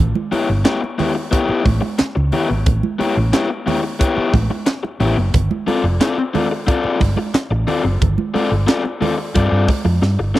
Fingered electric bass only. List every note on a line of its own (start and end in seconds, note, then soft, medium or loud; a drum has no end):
0.00 0.12 A1 loud
0.50 0.63 G1 loud
1.49 muted fingered electric bass stroke medium
1.65 1.79 A1 loud
2.00 muted fingered electric bass stroke medium
2.17 2.30 C#2 medium
2.50 2.64 G#1 medium
2.66 2.80 A1 loud
3.17 3.31 A1 loud
4.18 muted fingered electric bass stroke soft
4.34 4.47 A1 loud
5.00 5.14 A1 medium
5.17 5.31 F#1 medium
5.34 5.48 G1 loud
5.84 5.98 F1 loud
6.85 muted fingered electric bass stroke medium
7.01 7.15 G1 medium
7.34 muted fingered electric bass stroke medium
7.51 7.65 A1 medium
7.84 7.98 F#1 medium
8.02 8.15 G1 loud
8.52 8.65 G1 medium
9.35 9.49 G2 medium
9.52 9.66 G2 loud
9.85 9.99 F2 medium
10.02 10.16 G2 loud
10.19 10.33 G1 medium